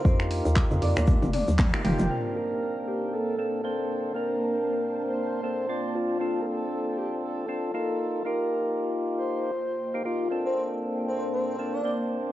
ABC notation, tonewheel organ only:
X:1
M:4/4
L:1/16
Q:"Swing 16ths" 1/4=117
K:Bb
V:1 name="Tonewheel organ"
[B,EFG]8- [B,EFG]2 z3 [B,EFG] [B,EFG]2 | [B,CDB]8- [B,CDB]2 [B,CDA]2 [B,CDc]4 | [B,CDB]8- [B,CDB]2 [B,CDA]2 [CDFd]4 | [CDFA]8- [CDFA]2 [CDFA]2 [B,EFA]4 |
[B,EFG]8- [B,EFG]2 z3 [B,EFG] [B,EFG]2 | [B,CDA]8- [B,CDA]2 [B,CDA]2 [B,CDc]4 |]